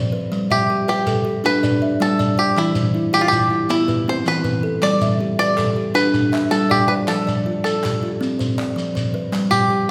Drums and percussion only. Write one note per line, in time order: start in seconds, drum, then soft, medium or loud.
0.32 shekere medium
0.50 shekere medium
0.88 shekere medium
1.06 shekere medium
1.45 shekere medium
1.63 shekere medium
2.01 shekere medium
2.20 shekere medium
2.57 shekere medium
2.75 shekere medium
3.14 shekere medium
3.32 shekere medium
3.70 shekere medium
3.88 shekere medium
4.26 shekere medium
4.44 shekere medium
4.82 clap medium
4.82 shekere medium
5.01 shekere medium
5.40 shekere medium
5.58 clap medium
5.58 shekere medium
5.96 shekere medium
6.14 shekere medium
6.34 clap medium
6.52 shekere medium
6.71 shekere medium
7.08 clap medium
7.08 shekere medium
7.28 shekere medium
7.66 shekere medium
7.84 clap medium
7.84 shekere medium
8.22 shekere soft
8.40 shekere medium
8.59 clap medium
8.78 shekere medium
8.96 shekere medium
9.33 clap medium
9.33 shekere soft
9.52 shekere medium